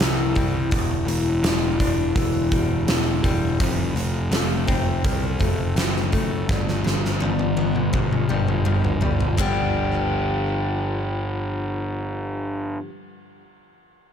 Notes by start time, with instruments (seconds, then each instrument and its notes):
Already playing: steel-string acoustic guitar G3 D4
0.00 picked electric bass C2, steel-string acoustic guitar E3, snare, open hi-hat
0.35 steel-string acoustic guitar G3, kick, open hi-hat
0.71 picked electric bass E1, steel-string acoustic guitar E2, kick, open hi-hat
1.06 picked electric bass E1, steel-string acoustic guitar E3, open hi-hat
1.43 picked electric bass E1, steel-string acoustic guitar G3, snare, open hi-hat
1.80 steel-string acoustic guitar D4, kick, open hi-hat
2.16 picked electric bass E1, steel-string acoustic guitar E3, kick, open hi-hat
2.52 picked electric bass E1, steel-string acoustic guitar G3, kick, open hi-hat
2.87 picked electric bass E1, steel-string acoustic guitar E3, snare, open hi-hat
3.24 picked electric bass E1, steel-string acoustic guitar G3, kick, open hi-hat
3.60 picked electric bass F1, steel-string acoustic guitar F3, kick, open hi-hat
3.96 picked electric bass F1, steel-string acoustic guitar F3, open hi-hat
4.31 picked electric bass F1, steel-string acoustic guitar A3, snare, open hi-hat
4.67 picked electric bass F1, steel-string acoustic guitar C4, kick, open hi-hat
5.04 picked electric bass C2, steel-string acoustic guitar F3, kick, open hi-hat
5.39 picked electric bass F1, steel-string acoustic guitar A3, kick, open hi-hat
5.76 picked electric bass F#1, steel-string acoustic guitar F3, snare, open hi-hat
5.97 snare
6.12 steel-string acoustic guitar A3, kick, open hi-hat
6.49 picked electric bass G1, steel-string acoustic guitar G2, kick, snare
6.68 snare
6.84 picked electric bass G1, steel-string acoustic guitar F3, snare
7.05 snare
7.20 picked electric bass G1, steel-string acoustic guitar G3, high tom
7.39 high tom
7.57 steel-string acoustic guitar B3, high tom
7.76 mid tom
7.93 picked electric bass G1, steel-string acoustic guitar F3, kick, mid tom
8.13 mid tom
8.29 picked electric bass G1, steel-string acoustic guitar G3, mid tom
8.48 mid tom
8.65 picked electric bass G1, steel-string acoustic guitar F3, mid tom
8.84 floor tom
9.01 picked electric bass G1, steel-string acoustic guitar G3, floor tom
9.21 floor tom
9.37 picked electric bass G1, steel-string acoustic guitar G2 D3 F3 G3 B3 G4, kick, ride bell